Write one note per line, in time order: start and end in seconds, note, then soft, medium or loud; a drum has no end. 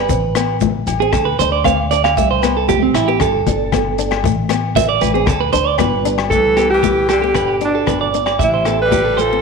0.00 0.58 B4 medium
0.09 0.83 A1 medium
0.09 0.27 C4 medium
0.09 kick medium
0.09 muted conga soft
0.09 shekere loud
0.35 0.53 B3 medium
0.35 cross-stick medium
0.35 closed hi-hat soft
0.35 muted conga soft
0.35 low agogo medium
0.35 shekere medium
0.61 0.79 A3 medium
0.61 kick medium
0.61 high conga loud
0.61 shekere loud
0.87 1.11 A1 medium
0.87 closed hi-hat soft
0.87 high conga medium
0.87 low agogo medium
0.87 shekere medium
1.00 1.19 C4 medium
1.00 1.13 G#4 medium
1.13 1.37 D2 loud
1.13 1.26 A4 medium
1.13 kick medium
1.13 cross-stick medium
1.13 muted conga soft
1.13 low agogo medium
1.13 shekere medium
1.25 1.38 B4 medium
1.39 2.13 D2 loud
1.39 1.58 D4 medium
1.39 1.52 C5 loud
1.39 closed hi-hat soft
1.39 shekere medium
1.52 1.65 D5 medium
1.64 1.83 C4 medium
1.64 1.78 F5 loud
1.64 kick medium
1.64 cross-stick medium
1.64 muted conga soft
1.64 high conga medium
1.64 low agogo medium
1.64 shekere medium
1.91 2.09 D4 medium
1.91 2.04 D5 medium
1.91 closed hi-hat medium
1.91 shekere medium
2.04 2.17 F5 loud
2.04 cross-stick medium
2.04 low agogo medium
2.17 2.91 C2 loud
2.17 2.35 A3 medium
2.17 2.30 E5 medium
2.17 kick medium
2.17 muted conga soft
2.17 shekere medium
2.31 2.43 C5 medium
2.43 2.61 B3 medium
2.43 2.56 B4 loud
2.43 cross-stick medium
2.43 closed hi-hat soft
2.43 muted conga soft
2.43 low agogo medium
2.43 shekere medium
2.57 2.68 A4 medium
2.69 2.86 A3 medium
2.69 2.82 G4 medium
2.69 kick medium
2.69 high conga loud
2.69 shekere loud
2.83 2.95 C4 medium
2.94 3.18 A1 medium
2.94 3.08 E4 medium
2.94 cross-stick medium
2.94 closed hi-hat soft
2.94 low agogo medium
2.94 shekere medium
3.08 3.25 B3 medium
3.08 3.20 G4 medium
3.20 3.44 G1 loud
3.20 4.21 A4 medium
3.20 kick medium
3.20 cross-stick medium
3.20 muted conga soft
3.20 low agogo medium
3.20 shekere medium
3.47 4.21 G1 loud
3.47 3.65 D4 medium
3.47 kick medium
3.47 closed hi-hat soft
3.47 high conga medium
3.47 shekere medium
3.72 3.90 B3 medium
3.72 kick medium
3.72 cross-stick medium
3.72 muted conga soft
3.72 high conga medium
3.72 low agogo medium
3.72 shekere medium
3.98 4.16 D4 medium
3.98 closed hi-hat soft
3.98 shekere medium
4.11 cross-stick medium
4.11 low agogo medium
4.24 4.98 A1 loud
4.24 4.42 A3 medium
4.24 kick loud
4.24 muted conga soft
4.24 shekere medium
4.49 4.67 B3 medium
4.49 cross-stick medium
4.49 closed hi-hat medium
4.49 muted conga soft
4.49 low agogo medium
4.49 shekere medium
4.75 4.88 E5 medium
4.75 muted nylon-string guitar stroke medium
4.75 kick medium
4.75 high conga loud
4.75 shekere loud
4.89 5.02 D5 medium
5.01 5.26 A1 loud
5.01 5.14 B4 medium
5.01 closed hi-hat medium
5.01 high conga medium
5.01 low agogo medium
5.01 shekere medium
5.14 5.32 C4 medium
5.14 5.27 G#4 medium
5.26 5.51 D2 loud
5.26 5.41 A4 medium
5.26 kick loud
5.26 cross-stick medium
5.26 muted conga soft
5.26 low conga medium
5.26 low agogo medium
5.26 shekere medium
5.41 5.52 B4 medium
5.53 5.77 D2 loud
5.53 5.71 D4 medium
5.53 5.67 C5 loud
5.53 closed hi-hat medium
5.53 shekere medium
5.67 5.78 D5 loud
5.78 6.28 G1 loud
5.78 5.97 B3 medium
5.78 6.16 B4 medium
5.78 kick medium
5.78 cross-stick medium
5.78 muted conga soft
5.78 high conga medium
5.78 low agogo medium
5.78 shekere medium
6.05 6.23 D4 medium
6.05 closed hi-hat medium
6.05 shekere medium
6.18 cross-stick medium
6.18 low agogo medium
6.30 7.31 C2 medium
6.30 6.69 E3 medium
6.30 6.49 A3 medium
6.30 6.68 A4 loud
6.30 6.56 A4 medium
6.30 kick medium
6.30 muted conga soft
6.30 shekere medium
6.57 6.75 B3 medium
6.57 6.70 G4 medium
6.57 cross-stick medium
6.57 closed hi-hat soft
6.57 low agogo medium
6.57 shekere medium
6.70 7.08 E3 medium
6.70 7.07 G4 medium
6.70 6.82 A4 medium
6.83 7.01 A3 medium
6.83 7.08 G4 medium
6.83 kick medium
6.83 high conga loud
6.83 shekere medium
7.09 7.60 D3 medium
7.09 7.58 G4 medium
7.09 7.22 A4 medium
7.09 cross-stick medium
7.09 closed hi-hat soft
7.09 high conga medium
7.09 low agogo medium
7.09 shekere medium
7.22 7.40 B3 medium
7.22 7.35 G4 medium
7.35 7.84 G1 medium
7.35 7.48 B4 medium
7.35 kick medium
7.35 cross-stick medium
7.35 muted conga soft
7.35 low agogo medium
7.35 shekere medium
7.48 7.73 G4 medium
7.61 7.78 D4 medium
7.61 closed hi-hat soft
7.61 muted conga soft
7.65 8.13 B2 medium
7.65 8.12 D4 medium
7.75 7.87 A4 medium
7.87 8.36 G1 medium
7.87 8.05 B3 medium
7.87 8.00 B4 medium
7.87 kick medium
7.87 cross-stick medium
7.87 high conga medium
7.87 low agogo medium
7.87 shekere medium
8.01 8.25 D5 medium
8.14 8.31 D4 medium
8.14 closed hi-hat soft
8.14 muted conga soft
8.14 shekere medium
8.26 8.39 D5 medium
8.26 cross-stick medium
8.26 low agogo medium
8.39 9.39 A1 loud
8.39 8.58 A3 medium
8.39 8.52 E5 medium
8.39 kick medium
8.39 muted conga soft
8.39 shekere medium
8.43 8.80 C3 medium
8.43 8.78 E4 medium
8.54 8.65 C5 medium
8.65 8.84 B3 medium
8.65 8.91 A4 medium
8.65 cross-stick medium
8.65 closed hi-hat soft
8.65 low agogo medium
8.65 shekere medium
8.82 9.24 G3 medium
8.82 9.22 B4 medium
8.92 9.09 A3 medium
8.92 9.04 G4 medium
8.92 kick medium
8.92 high conga medium
8.92 shekere loud
9.05 9.17 A4 medium
9.17 9.42 A4 medium
9.17 9.42 C5 medium
9.17 closed hi-hat soft
9.17 high conga medium
9.17 low agogo medium
9.17 shekere medium
9.22 9.42 F3 medium
9.33 9.42 C4 medium